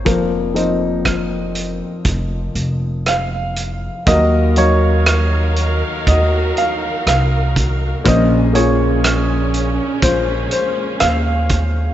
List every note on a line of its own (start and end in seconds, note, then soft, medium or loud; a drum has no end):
0.05 1.79 F1 medium
0.05 4.02 F1 medium
0.05 4.02 F2 medium
0.05 0.36 F3 medium
0.05 0.37 A#3 medium
0.05 0.37 C4 medium
0.05 0.08 A#4 medium
0.05 kick medium
0.05 closed hi-hat medium
0.10 3.04 F4 soft
0.10 3.04 A#4 medium
0.54 1.78 F3 medium
0.54 1.79 A#3 medium
0.54 1.79 C4 medium
0.54 1.79 D#4 medium
0.54 closed hi-hat soft
1.05 kick medium
1.05 cross-stick medium
1.05 closed hi-hat medium
1.55 closed hi-hat soft
2.05 2.49 F1 medium
2.05 kick medium
2.05 closed hi-hat medium
2.55 3.87 F1 medium
2.55 closed hi-hat soft
3.06 4.06 F5 medium
3.06 cross-stick medium
3.06 closed hi-hat medium
3.56 closed hi-hat soft
4.06 5.81 D#2 loud
4.06 8.01 D#2 medium
4.06 8.01 D#3 medium
4.06 4.37 F#3 medium
4.06 4.38 D#4 medium
4.06 8.01 D#4 medium
4.06 8.01 F#4 medium
4.06 8.01 A#4 medium
4.06 4.38 A#4 medium
4.06 4.58 D#5 loud
4.06 8.01 F5 medium
4.06 4.38 F5 medium
4.06 kick medium
4.06 closed hi-hat medium
4.10 4.58 F#4 medium
4.56 5.81 F#3 medium
4.56 5.81 D#4 medium
4.56 6.09 F#4 medium
4.56 5.82 A#4 medium
4.56 6.03 C#5 medium
4.56 5.81 F5 medium
4.56 closed hi-hat medium
5.06 cross-stick medium
5.06 closed hi-hat medium
5.56 closed hi-hat soft
6.07 6.50 D#2 medium
6.07 8.03 F#4 medium
6.07 6.58 D#5 medium
6.07 kick medium
6.07 closed hi-hat medium
6.57 7.03 F5 medium
6.57 closed hi-hat soft
7.07 7.92 C2 medium
7.07 8.09 F5 medium
7.07 cross-stick medium
7.07 closed hi-hat medium
7.56 kick medium
7.56 closed hi-hat soft
8.04 11.94 A#1 medium
8.04 9.78 A#1 loud
8.04 11.94 A#2 medium
8.04 11.94 C#3 medium
8.04 8.35 A#3 medium
8.04 10.01 A#3 medium
8.04 8.35 C#4 medium
8.04 11.94 C#4 medium
8.04 8.35 F4 medium
8.04 8.08 C5 medium
8.04 8.57 D#5 medium
8.04 kick medium
8.04 closed hi-hat medium
8.10 10.01 C5 medium
8.53 9.76 A#3 medium
8.53 9.77 C#4 medium
8.53 8.56 F4 medium
8.53 9.77 G#4 medium
8.53 9.99 C#5 medium
8.53 closed hi-hat medium
8.58 10.02 F4 medium
9.04 cross-stick medium
9.04 closed hi-hat medium
9.54 closed hi-hat soft
10.02 10.46 A#1 medium
10.02 11.94 G#3 medium
10.02 11.94 F4 medium
10.02 10.48 C5 medium
10.02 kick medium
10.02 closed hi-hat medium
10.51 11.03 C5 medium
10.51 closed hi-hat soft
11.00 11.88 D#2 medium
11.00 11.94 F5 medium
11.00 cross-stick medium
11.00 closed hi-hat medium
11.49 kick medium
11.49 closed hi-hat medium